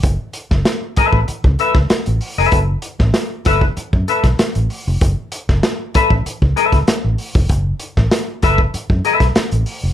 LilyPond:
<<
  \new Staff \with { instrumentName = "Clean electric guitar" } { \time 4/4 \key fis \minor \tempo 4 = 97 r4. <a' b' e''>16 r8. <a' b' e''>16 r4 <a' b' e''>16 | r4. <a' b' e''>16 r8. <a' b' e''>16 r4 r16 | r4. <a' b' e''>16 r8. <a' b' e''>16 r4 r16 | r4. <a' b' e''>16 r8. <a' b' e''>16 r4 r16 | }
  \new Staff \with { instrumentName = "Fingered electric bass" } { \clef bass \time 4/4 \key fis \minor fis,,16 r8 fis,,16 r8. a,,16 r16 cis,16 r16 cis,16 r16 a,,16 r16 eis,,16 | fis,,8 r16 a,,16 r8 fis,,8 r16 fis,16 r16 b,,16 r16 a,,16 r16 eis,,16 | fis,,16 r8 fis,,16 r8. a,,16 r16 cis,16 r16 cis,16 r16 a,,16 r16 eis,,16 | fis,,8 r16 a,,16 r8 fis,,8 r16 fis,16 r16 b,,16 r16 a,,16 r16 eis,,16 | }
  \new DrumStaff \with { instrumentName = "Drums" } \drummode { \time 4/4 <hh bd>8 hh16 <bd sn>16 <hh sn>8 <hh bd>16 bd16 hh16 bd16 hh16 <bd sn>16 <hh sn>16 hh16 hho8 | <hh bd>8 hh16 <bd sn>16 <hh sn>8 <hh bd sn>16 bd16 hh16 bd16 hh16 <hh bd sn>16 <hh sn>16 hh16 hho8 | <hh bd>8 hh16 <bd sn>16 <hh sn>8 <hh bd>16 bd16 hh16 bd16 hh16 <hh bd sn>16 <hh sn>8 hho16 bd16 | <hh bd>8 hh16 <bd sn>16 <hh sn>8 <hh bd sn>16 bd16 hh16 bd16 hh16 <hh bd sn>16 <hh sn>16 hh16 hho8 | }
>>